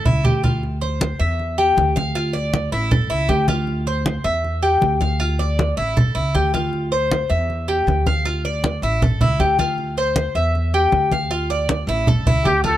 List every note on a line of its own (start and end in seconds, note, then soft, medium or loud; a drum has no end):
0.04 0.23 C#2 medium
0.04 0.24 E4 medium
0.04 low conga medium
0.24 1.14 D2 medium
0.24 0.43 G4 medium
0.24 low conga medium
0.44 0.62 F4 medium
0.44 low conga medium
0.63 high conga soft
0.81 1.19 C5 medium
0.81 high conga soft
1.01 high conga medium
1.20 1.73 E2 loud
1.20 1.57 E5 medium
1.20 high conga soft
1.39 high conga soft
1.58 1.95 G4 medium
1.58 high conga soft
1.77 2.66 D2 medium
1.77 high conga medium
1.96 2.14 F5 medium
1.96 high conga medium
2.15 2.34 F4 medium
2.15 high conga soft
2.33 2.71 D5 medium
2.33 high conga soft
2.54 high conga medium
2.72 3.08 A1 loud
2.72 2.91 E4 medium
2.72 high conga soft
2.91 3.10 A4 medium
2.91 high conga soft
2.91 low conga medium
3.10 3.28 C#2 medium
3.10 3.29 E4 medium
3.10 high conga soft
3.29 4.19 D2 medium
3.29 3.48 G4 medium
3.29 high conga medium
3.48 3.86 F4 medium
3.48 high conga medium
3.67 high conga soft
3.87 4.24 C5 medium
3.87 high conga soft
4.06 high conga loud
4.24 4.78 E2 loud
4.24 4.62 E5 medium
4.24 high conga soft
4.44 high conga soft
4.63 5.00 G4 medium
4.63 high conga soft
4.81 5.71 D2 medium
4.81 high conga medium
5.01 5.19 F5 medium
5.01 high conga medium
5.20 5.39 F4 medium
5.20 high conga soft
5.39 5.76 D5 medium
5.39 high conga soft
5.59 high conga loud
5.77 6.13 A1 medium
5.77 5.96 E4 medium
5.77 high conga soft
5.97 6.15 A4 medium
5.97 high conga soft
5.97 low conga medium
6.15 6.33 C#2 medium
6.15 6.34 E4 medium
6.15 high conga soft
6.34 7.24 D2 medium
6.34 6.53 G4 medium
6.34 high conga medium
6.54 6.91 F4 medium
6.54 high conga medium
6.73 high conga soft
6.92 7.29 C5 medium
6.92 high conga soft
7.12 high conga medium
7.30 7.83 E2 loud
7.30 7.67 E5 medium
7.30 high conga soft
7.50 high conga soft
7.68 8.05 G4 medium
7.68 high conga soft
7.87 8.77 D2 medium
7.87 high conga medium
8.06 8.25 F5 medium
8.06 high conga medium
8.25 8.44 F4 medium
8.25 high conga soft
8.45 8.82 D5 medium
8.45 high conga soft
8.64 high conga medium
8.82 9.18 A1 loud
8.82 9.02 E4 medium
8.82 high conga soft
9.02 9.21 A4 medium
9.02 high conga soft
9.02 low conga medium
9.21 9.39 C#2 medium
9.21 9.40 E4 medium
9.21 high conga soft
9.21 low conga medium
9.40 10.29 D2 medium
9.40 9.58 G4 medium
9.40 high conga medium
9.59 9.96 F4 medium
9.59 high conga medium
9.78 high conga soft
9.97 10.34 C5 medium
9.97 high conga soft
10.16 high conga medium
10.35 10.88 E2 medium
10.35 10.72 E5 medium
10.35 high conga soft
10.55 high conga soft
10.74 11.11 G4 medium
10.74 high conga soft
10.92 11.82 D2 medium
10.92 high conga medium
11.12 11.30 F5 medium
11.12 high conga medium
11.31 11.49 F4 medium
11.31 high conga soft
11.50 11.87 D5 medium
11.50 high conga soft
11.69 high conga medium
11.87 12.23 A1 loud
11.87 12.07 E4 medium
11.87 high conga soft
12.07 12.26 A4 medium
12.07 high conga soft
12.07 low conga medium
12.25 12.44 C#2 medium
12.25 12.45 E4 loud
12.25 high conga soft
12.25 low conga medium
12.45 12.77 D2 medium
12.45 12.63 G4 medium
12.45 12.66 G4 medium
12.45 high conga medium
12.64 12.77 F4 medium
12.64 12.77 A4 loud
12.64 high conga medium